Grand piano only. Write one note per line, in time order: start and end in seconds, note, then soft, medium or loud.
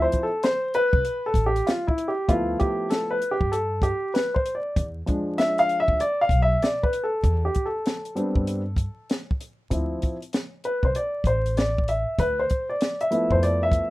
0.00 0.26 F3 medium
0.00 0.26 C4 soft
0.00 0.26 E4 medium
0.00 0.23 C5 medium
0.23 0.42 A4 medium
0.44 0.75 C5 medium
0.75 1.28 B4 loud
1.26 1.47 A4 medium
1.46 1.68 G4 medium
1.67 1.86 F4 medium
1.87 2.09 E4 medium
2.08 2.29 G4 medium
2.28 3.17 F3 medium
2.28 3.18 A3 medium
2.28 3.18 B3 medium
2.28 3.18 E4 medium
2.28 2.61 F4 medium
2.59 2.88 G4 medium
2.90 3.12 A4 medium
3.11 3.32 B4 medium
3.31 3.53 G4 medium
3.52 3.84 A4 medium
3.83 4.12 G4 medium
4.14 4.33 B4 medium
4.34 4.54 C5 medium
4.55 4.84 D5 medium
5.06 5.96 F3 medium
5.06 5.96 G#3 soft
5.06 5.96 D4 medium
5.38 5.57 E5 loud
5.59 5.78 F5 loud
5.80 5.99 E5 loud
6.01 6.22 D5 loud
6.21 6.40 F5 loud
6.42 6.63 E5 loud
6.63 6.84 D5 medium
6.83 7.04 B4 medium
7.04 7.42 A4 medium
7.45 7.66 G4 medium
7.66 9.16 A4 medium
8.15 8.60 G3 medium
8.15 8.60 B3 medium
8.15 8.61 C4 medium
8.15 8.61 D4 medium
9.70 10.15 F3 medium
9.70 10.15 C4 medium
9.70 10.16 E4 medium
10.65 10.85 B4 medium
10.85 10.96 C5 medium
10.96 11.27 D5 medium
11.27 11.58 C5 medium
11.57 11.89 D5 medium
11.89 12.20 E5 medium
12.20 12.40 B4 medium
12.40 12.71 C5 medium
12.70 13.01 D5 medium
13.01 13.29 E5 medium
13.11 13.90 F3 medium
13.11 13.90 A3 medium
13.11 13.90 B3 medium
13.11 13.90 E4 medium
13.32 13.43 C5 medium
13.43 13.61 D5 medium
13.63 13.90 E5 medium